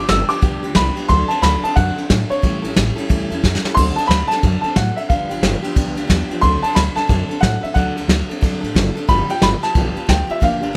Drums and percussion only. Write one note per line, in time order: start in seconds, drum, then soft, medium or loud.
0.09 snare loud
0.09 ride medium
0.30 ride medium
0.42 kick loud
0.42 ride medium
0.63 ride medium
0.75 kick medium
0.75 snare loud
0.75 ride medium
0.96 ride medium
1.09 kick loud
1.09 ride medium
1.30 ride medium
1.43 snare loud
1.43 ride medium
1.64 ride medium
1.76 kick loud
1.76 ride medium
1.98 ride medium
2.10 kick medium
2.10 snare loud
2.10 ride medium
2.31 ride medium
2.43 kick loud
2.43 ride medium
2.64 ride medium
2.76 snare loud
2.76 ride medium
2.98 ride medium
3.10 kick loud
3.10 ride medium
3.31 ride medium
3.44 kick medium
3.44 snare medium
3.55 snare medium
3.65 snare medium
3.77 kick loud
3.77 crash loud
3.98 ride medium
4.11 snare loud
4.11 ride medium
4.31 snare soft
4.31 ride medium
4.43 kick loud
4.43 ride medium
4.64 ride medium
4.76 kick medium
4.76 snare loud
4.76 ride medium
4.97 ride medium
5.10 kick loud
5.10 ride medium
5.31 ride medium
5.43 snare loud
5.43 ride medium
5.64 ride medium
5.76 kick loud
5.76 ride medium
5.97 ride medium
6.10 kick medium
6.10 snare loud
6.10 ride medium
6.31 ride medium
6.43 kick loud
6.43 ride medium
6.64 ride medium
6.76 snare loud
6.76 ride medium
6.97 snare soft
6.97 ride medium
7.09 kick loud
7.09 ride medium
7.30 ride medium
7.43 kick medium
7.43 snare loud
7.43 ride medium
7.64 ride medium
7.76 kick loud
7.76 ride medium
7.97 ride medium
8.09 snare loud
8.09 ride medium
8.31 ride medium
8.43 kick loud
8.43 ride medium
8.64 ride medium
8.76 kick medium
8.76 snare loud
8.76 ride medium
8.96 ride medium
9.09 kick loud
9.09 ride medium
9.29 ride medium
9.42 snare loud
9.42 ride medium
9.63 snare soft
9.63 ride medium
9.75 kick loud
9.75 ride medium
9.96 ride medium
10.09 kick medium
10.09 snare loud
10.09 ride medium
10.29 ride medium
10.42 kick loud
10.42 ride medium
10.63 ride medium